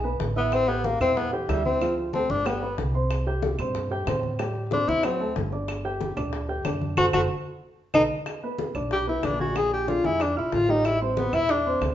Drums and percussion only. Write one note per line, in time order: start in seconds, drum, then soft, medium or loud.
0.04 high conga soft
0.20 high bongo medium
0.20 low bongo medium
0.20 high conga medium
0.36 high bongo soft
0.36 high conga soft
0.52 high bongo medium
0.52 high conga soft
0.52 claves medium
0.68 high conga soft
0.84 high bongo medium
0.84 high conga loud
1.01 high conga soft
1.01 low conga medium
1.01 claves medium
1.17 high bongo medium
1.17 high conga soft
1.17 low conga medium
1.33 high conga soft
1.49 high bongo medium
1.49 low bongo medium
1.49 high conga medium
1.49 claves medium
1.65 high conga medium
1.81 high bongo medium
1.81 high conga soft
1.81 claves medium
1.97 high bongo soft
1.97 high conga soft
2.13 high bongo medium
2.13 high conga medium
2.30 high bongo soft
2.30 high conga medium
2.46 high bongo medium
2.46 high conga soft
2.46 claves medium
2.62 high conga soft
2.78 high bongo medium
2.78 low bongo medium
2.78 high conga medium
2.94 high bongo soft
2.94 high conga soft
3.11 high bongo medium
3.11 high conga soft
3.11 claves medium
3.27 high conga soft
3.42 high bongo medium
3.42 high conga loud
3.59 high conga soft
3.59 low conga medium
3.59 claves medium
3.75 high bongo medium
3.75 high conga soft
3.75 low conga medium
3.92 high conga soft
4.07 high bongo medium
4.07 low bongo medium
4.07 high conga medium
4.07 claves medium
4.23 high conga medium
4.39 high bongo medium
4.39 high conga soft
4.39 claves medium
4.55 high bongo soft
4.55 high conga soft
4.71 high bongo medium
4.71 high conga loud
4.89 high conga medium
5.03 high bongo medium
5.03 high conga soft
5.03 claves medium
5.21 high conga soft
5.36 high bongo medium
5.36 low bongo medium
5.36 high conga medium
5.52 high bongo soft
5.52 high conga soft
5.68 high bongo medium
5.68 high conga soft
5.68 claves medium
5.85 high conga soft
6.01 high bongo medium
6.01 high conga loud
6.17 high conga soft
6.17 low conga medium
6.17 claves medium
6.33 high bongo medium
6.33 high conga soft
6.49 high conga soft
6.65 high bongo medium
6.65 low bongo medium
6.65 high conga medium
6.65 claves medium
6.81 high conga medium
6.97 low bongo loud
6.97 high conga loud
6.97 claves medium
7.13 low bongo medium
7.13 high conga loud
7.13 claves loud
7.94 low bongo loud
7.94 high conga loud
7.94 claves loud
8.26 high bongo medium
8.26 high conga soft
8.26 claves medium
8.43 high conga soft
8.58 high bongo medium
8.58 high conga medium
8.75 high conga soft
8.75 low conga medium
8.75 claves medium
8.91 high bongo medium
8.91 high conga soft
9.08 high conga soft
9.23 high bongo medium
9.23 low bongo medium
9.23 high conga medium
9.23 claves medium
9.40 high conga medium
9.56 high bongo medium
9.56 high conga soft
9.56 claves medium
9.72 high bongo soft
9.72 high conga soft
9.88 high bongo medium
9.88 high conga medium
10.04 high bongo soft
10.04 high conga medium
10.20 high bongo medium
10.20 claves medium
10.37 high conga soft
10.52 high bongo medium
10.52 low bongo medium
10.52 high conga medium
10.69 high bongo soft
10.69 high conga soft
10.85 high bongo medium
10.85 high conga soft
10.85 claves medium
11.01 high conga soft
11.17 high bongo medium
11.17 high conga medium
11.33 high conga soft
11.33 low conga medium
11.33 claves medium
11.49 high bongo medium
11.49 high conga soft
11.66 high conga soft
11.82 high bongo medium
11.82 low bongo medium
11.82 high conga medium
11.82 claves medium